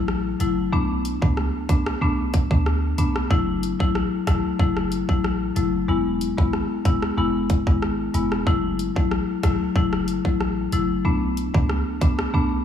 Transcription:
Already playing: A1
0.08 cross-stick
0.40 F#1 F#3 A3 E4, closed hi-hat
0.72 B1 A3 B3 D4
1.05 closed hi-hat
1.22 C#2 A3 B3 D4, kick
1.37 cross-stick
1.69 B1 A3 B3 D4, kick, closed hi-hat
1.86 cross-stick
2.01 B1 A3 B3 D4
2.34 kick, closed hi-hat
2.51 D2 A3 B3 D4, kick
2.66 cross-stick
2.98 B1 A3 B3 D4, closed hi-hat
3.16 cross-stick
3.30 F#1 F#3 A3 E4, kick
3.63 closed hi-hat
3.80 A1 F#3 A3 E4, kick
3.95 cross-stick
4.27 G#1 F#3 A3 E4, kick, cross-stick, closed hi-hat
4.59 F#1 F#3 A3 E4, kick
4.77 cross-stick
4.92 closed hi-hat
5.09 A1 F#3 A3 E4, kick
5.24 cross-stick
5.56 F#1 F#3 A3 E4, closed hi-hat
5.88 E1 G#3 B3 E4
6.21 closed hi-hat
6.38 G#1 G#3 B3 E4, kick
6.53 cross-stick
6.85 F#1 G#3 B3 E4, kick, closed hi-hat
7.02 cross-stick
7.17 E1 G#3 B3 E4
7.50 kick, closed hi-hat
7.67 G#1 G#3 B3 E4, kick
7.82 cross-stick
8.14 E1 G#3 B3 E4, closed hi-hat
8.32 cross-stick
8.47 F#1 F#3 A3 E4, kick
8.79 closed hi-hat
8.96 A1 F#3 A3 E4, kick
9.11 cross-stick
9.43 G#1 F#3 A3 E4, kick, cross-stick, closed hi-hat
9.76 F#1 F#3 A3 E4, kick
9.93 cross-stick
10.08 closed hi-hat
10.25 A1 F#3 A3 E4, kick
10.41 cross-stick
10.72 F#1 F#3 A3 E4, closed hi-hat
11.05 B1 A3 B3 D4
11.37 closed hi-hat
11.54 C#2 A3 B3 D4, kick
11.70 cross-stick
12.01 B1 A3 B3 D4, kick, closed hi-hat
12.19 cross-stick
12.34 B1 A3 B3 D4

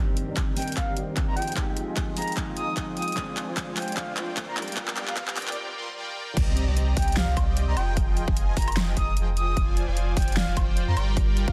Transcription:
Already playing: C2 C3 D#3 A#3 C4 D4 G4 D5 D#5 A#5, riser
0.00 G4
0.17 closed hi-hat
0.28 C2 C4 G4 D5 D#5 A#5
0.37 kick, clap, closed hi-hat
0.55 C2 D#3 A#3 C4 D4 G4 D5 D#5 G5 A#5, open hi-hat
0.59 A#4, closed hi-hat
0.68 closed hi-hat
0.72 closed hi-hat
0.76 F5, kick, clap, closed hi-hat
0.88 C2 C4 G4 D5 D#5 A#5
0.97 C2 C4 G4 D5 D#5 G5, closed hi-hat
1.17 kick, clap, closed hi-hat
1.27 C2 C4 G4 D5 D#5 A#5 C6
1.36 F1 F3 F4 G#4 D#5 G5, closed hi-hat
1.42 closed hi-hat
1.47 closed hi-hat
1.52 F3 G#3, closed hi-hat
1.56 F3 G#3 C4 D#4 G4, kick, clap, closed hi-hat
1.77 closed hi-hat
1.87 F1 F3 F4 G#4 D#5 G#5
1.97 kick, clap, closed hi-hat
2.15 F1 F3 G#3 C4 D#4 F4 G#4 D#5 G5 A#5, open hi-hat
2.19 G#4, closed hi-hat
2.28 closed hi-hat
2.32 closed hi-hat
2.37 kick, clap, closed hi-hat
2.57 F1 F3 F4 G#4 D#5 A#5 D#6, closed hi-hat
2.77 F1 F3 F4 G#4 D#5 G5, kick, clap, closed hi-hat
2.97 D#6, closed hi-hat
3.02 closed hi-hat
3.08 closed hi-hat
3.12 F3 G#3, closed hi-hat
3.16 F1 F3 C4 D4 F4 G#4 C5 D5 G#5, kick, clap, closed hi-hat
3.37 clap, closed hi-hat
3.48 F1 F3 F4 C5 D5 G#5
3.57 kick, clap, closed hi-hat
3.75 F3 G#3 D4 F4 C5 D5 G5 G#5, clap, open hi-hat
3.82 closed hi-hat
3.88 closed hi-hat
3.92 closed hi-hat
3.97 F5, kick, clap, closed hi-hat
4.08 F3 F4 C5 D5 G#5
4.17 F3 F4 C5 D5 G5, clap, closed hi-hat
4.37 kick, clap, closed hi-hat
4.48 F3 F4 C5 D5 A#5 C6
4.57 G1 G3 F4 A#4 D5 G5, clap, closed hi-hat
4.62 closed hi-hat
4.68 closed hi-hat
4.72 F3 G3, closed hi-hat
4.77 A#3 D4 G4, kick, clap, closed hi-hat
4.88 clap
4.97 clap, closed hi-hat
5.08 G1 G3 F4 A#4 D5 F5 A#5, clap
5.17 F5, kick, clap, closed hi-hat
5.28 clap
5.36 F3 G3 A#3 D4 F4 A#4 D5 G5, clap, open hi-hat
5.42 closed hi-hat
5.48 D5, clap, closed hi-hat
5.52 closed hi-hat
5.77 G3 F4 A#4 D5 C6
5.97 G3 F4 A#4 D5 G5
6.37 C2 C4 G4 D5 D#5 A#5, kick, closed hi-hat, crash, impact
6.57 closed hi-hat
6.68 C2 C4 G4 D5 D#5 A#5
6.77 closed hi-hat
6.97 C2 C4 G4 D5 D#5 G5 A#5, kick, open hi-hat
7.02 closed hi-hat
7.08 closed hi-hat
7.12 closed hi-hat
7.17 F5, snare, closed hi-hat
7.28 C2 C4 G4 D5 D#5 A#5
7.37 C2 C4 G4 D5 D#5 G5, kick, closed hi-hat, high woodblock
7.57 closed hi-hat
7.68 C2 C4 G4 D5 D#5 A#5 C6
7.77 F1 F3 F4 G#4 D#5 G5, closed hi-hat, high woodblock
7.97 kick, closed hi-hat
8.17 closed hi-hat
8.28 F1 F3 F4 G#4 D#5 G#5, kick
8.37 closed hi-hat
8.57 F1 F3 F4 G#4 D#5 G5 A#5, kick, open hi-hat
8.62 closed hi-hat
8.68 closed hi-hat, high woodblock
8.72 closed hi-hat
8.77 snare, closed hi-hat, high woodblock
8.97 F1 F3 F4 G#4 D#5 A#5 D#6, kick, closed hi-hat
9.17 F1 F3 F4 G#4 D#5 G5, closed hi-hat
9.37 D#6, closed hi-hat
9.57 F1 F3 F4 C5 D5 G#5, kick, closed hi-hat
9.77 closed hi-hat
9.88 F1 F3 F4 C5 D5 G#5
9.97 closed hi-hat
10.17 F1 F3 F4 C5 D5 G5 G#5, kick, open hi-hat
10.22 closed hi-hat
10.28 closed hi-hat
10.32 closed hi-hat
10.37 F5, snare, closed hi-hat
10.48 F1 F3 F4 C5 D5 G#5
10.57 F1 F3 F4 C5 D5 G5, kick, closed hi-hat, high woodblock
10.77 closed hi-hat
10.88 F2 F3 F4 C5 D5 A#5 C6
10.97 G1 G3 F4 A#4 D5 G5, closed hi-hat, high woodblock
11.17 kick, closed hi-hat
11.37 closed hi-hat
11.48 G1 G3 F4 A#4 D5 F5 A#5, kick

